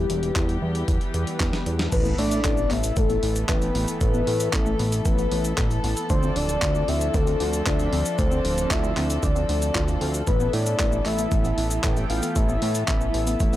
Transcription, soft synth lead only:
Already playing: G4
1.93 B4
2.19 D5
2.71 E5
2.97 A4
3.49 B4
4.01 B4
4.53 A4
5.06 B4
6.10 C5
6.36 D5
6.88 E5
7.14 A4
7.67 D5
8.19 C5
8.71 E5
9.23 D5
10.28 B4
10.53 D5
11.06 E5
12.10 F5
12.36 E5
12.88 E5

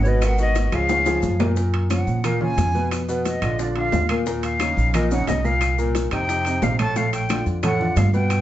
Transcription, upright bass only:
Already playing: G#1
0.72 C#2
1.23 F#2
2.07 A#2
2.58 F2
3.42 A#1
3.93 D#2
4.77 A#1
5.28 C2
6.11 F2
6.62 A#1
7.46 F2
7.96 G2

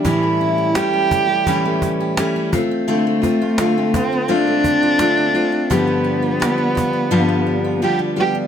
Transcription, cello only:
0.05 E4
0.76 G4
2.90 A3
3.95 C4
4.31 D4
5.73 B3
7.84 G4
8.20 G4

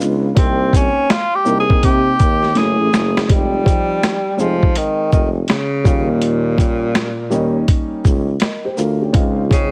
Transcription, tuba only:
0.00 C#2
0.37 C2
1.46 C2
1.84 C3
2.20 D#2
2.56 F#1
2.80 A1
2.92 F#1
3.30 F1
4.39 F1
5.13 F1
5.86 D#2
7.31 D#2
8.05 C#2
8.78 D2
9.14 C#2

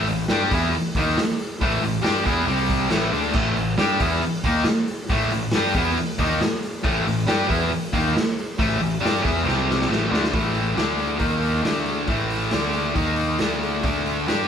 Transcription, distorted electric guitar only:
0.07 A2 E3
0.30 G3 D4 G4
0.52 E3 B3 E4
0.96 D#3 A#3 D#4
1.19 muted distorted electric guitar stroke
1.61 A2 E3 A3
1.82 A2 E3
2.02 G3 D4 G4
2.24 E3 B3 E4
2.47 C3 G3 C4
2.90 A2 E3 A3
3.12 D3 A3 D4
3.34 A2 E3 A3
3.56 A2 E3
3.78 G3 D4 G4
4.00 E3 B3 E4
4.45 D#3 A#3 D#4
4.67 muted distorted electric guitar stroke
5.09 A2 E3 A3
5.32 A2 E3
5.54 G3 D4 G4
5.75 E3 B3 E4
6.18 D#3 A#3 D#4
6.43 muted distorted electric guitar stroke
6.83 A2 E3 A3
7.07 A2 E3
7.27 G3 D4 G4
7.47 E3 B3 E4
7.92 D#3 A#3 D#4
8.14 muted distorted electric guitar stroke
8.59 A2 E3 A3
8.80 A2 E3
9.01 G3 D4 G4
9.22 E3 B3 E4
9.45 C3 G3 C4
9.88 A2 E3 A3
10.11 D3 A3 D4
10.32 A2 E3 A3
10.75 D3 A3 D4
11.18 D#3 A#3 D#4
11.63 D3 A3 D4
12.08 A2 E3 A3
12.53 D3 A3 D4
12.95 D#3 A#3 D#4
13.40 D3 A3 D4
13.84 D3 A3 D4
14.27 G3 D4 G4

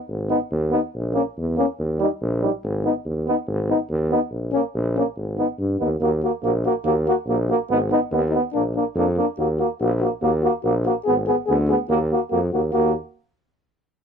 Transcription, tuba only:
0.08 G#1
0.51 D#2
0.95 A#1
1.37 E2
1.79 D#2
2.22 A#1
2.64 G#1
3.05 D#2
3.47 G#1
3.90 D#2
4.31 A#1
4.74 A#1
5.17 G#1
5.58 G2
5.81 D#2
6.01 D#2
6.43 A#1
6.84 D#2
7.26 A#1
7.69 G#1
8.11 D#2
8.55 A#1
8.95 F2
9.37 D#2
9.80 A#1
10.22 D#2
10.63 A#1
11.07 G#1
11.49 D2
11.89 D#2
12.32 F2
12.53 D#2
12.74 D#2

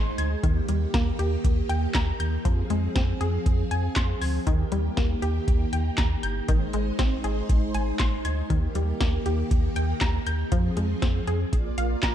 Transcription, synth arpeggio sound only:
Already playing: C6
0.18 G#6
0.43 D#3
0.69 G3
0.94 A#3
1.19 G4
1.69 G5
1.95 A#5
2.20 G6
2.45 F3
2.70 G#3
2.95 C4
3.21 G#4
3.71 G#5
3.96 C6
4.21 G#6
4.47 D#3
4.72 G3
4.97 A#3
5.22 G4
5.73 G5
5.98 A#5
6.23 G6
6.48 D#3
6.74 G#3
6.99 C4
7.24 G#4
7.75 G#5
8.00 C6
8.25 G#6
8.50 D#3
8.75 G3
9.01 A#3
9.26 G4
9.76 G5
10.01 A#5
10.27 G6
10.52 F3
10.77 G#3
11.02 C4
11.27 G#4
11.78 F5
12.03 A#5

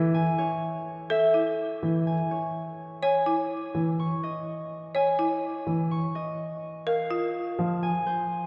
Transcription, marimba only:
1.10 A4
1.34 E4
3.03 C#5
3.26 E4
4.95 C#5
5.19 E4
6.87 A#4
7.11 F4

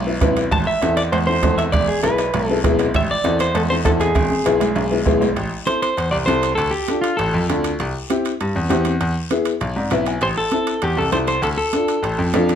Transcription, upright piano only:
0.06 B3 E4 B4
0.22 B3 E4 B4
0.82 C4 E4 A4
1.27 C4 E4 A4
1.43 C4 E4 A4
2.03 B3 E4 G#4
2.50 B3 E4 G#4
2.64 B3 E4 G#4
3.25 C4 E4 A4
3.70 C4 E4 A4
3.85 C4 E4 A4
4.45 B3 E4 G#4
4.91 B3 E4 G#4
5.06 B3 E4 G#4
5.66 C4 E4 A4
6.27 C4 E4 A4
6.88 D4 F4 A4
7.48 D4 F4 A4
8.10 C4 E4 G4
8.69 C4 E4 G4
9.31 B3 E4 G#4
9.77 D5
9.91 B3 E4 B4 E5
10.07 G#5
10.52 C4 E4 A4
11.12 C4 E4 A4
11.74 D4 F4 A4
12.34 D4 F4 A4

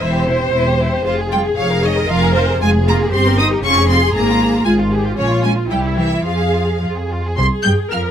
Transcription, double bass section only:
0.01 E1
0.54 E1
1.06 F1
1.58 F1
2.09 F1
2.60 F1
3.13 G1
3.63 F1
4.15 G#1
4.66 G#1
5.17 A#1
5.70 C2
6.25 F2
6.83 F2
7.38 C2
7.65 G2
7.91 F2

